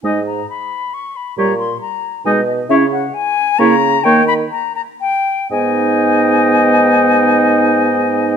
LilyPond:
<<
  \new Staff \with { instrumentName = "Flute" } { \time 3/4 \key gis \minor \tempo 4 = 128 gis''8 ais''8 b''4 cis'''8 b''8 | bes''8 bis''8 bes''4 gis''8 dis''8 | e''8 fis''8 gis''4 ais''4 | g''8 b''8 ais''8 ais''8 g''4 |
gis''2.~ | gis''2. | }
  \new Staff \with { instrumentName = "Oboe" } { \time 3/4 \key gis \minor dis''8 r2 r8 | des''8 r4. dis''8 r8 | cis''8 r4. cis''8 r8 | cis''8 r2 r8 |
dis''2.~ | dis''2. | }
  \new Staff \with { instrumentName = "Clarinet" } { \time 3/4 \key gis \minor dis'8 r2 r8 | g'8 r4. dis'8 r8 | e'8 r4. e'8 r8 | dis'8 r2 r8 |
dis'2.~ | dis'2. | }
  \new Staff \with { instrumentName = "French horn" } { \time 3/4 \key gis \minor gis8 r2 r8 | g8 r4. gis8 r8 | cis'8 r4. ais8 r8 | ais8 r2 r8 |
b2.~ | b2. | }
  \new Staff \with { instrumentName = "Bassoon" } { \clef bass \time 3/4 \key gis \minor gis,4 r2 | bes,4 r4 b,4 | cis4 r4 cis4 | dis4 r2 |
gis,2.~ | gis,2. | }
>>